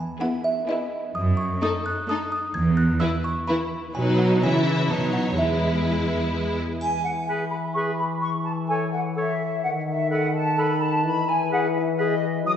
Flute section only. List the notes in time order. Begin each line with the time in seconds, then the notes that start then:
6.81 G#5
7.03 F#5
7.27 G#5
7.50 B5
7.74 C#6
7.98 B5
8.21 C#6
8.44 A5
8.69 G#5
8.92 F#5
9.16 E5
9.63 F#5
9.87 E5
10.11 F#5
10.35 A5
10.59 B5
10.82 A5
11.05 B5
11.28 G#5
11.52 F#5
11.75 E5
11.98 D#5
12.45 D#6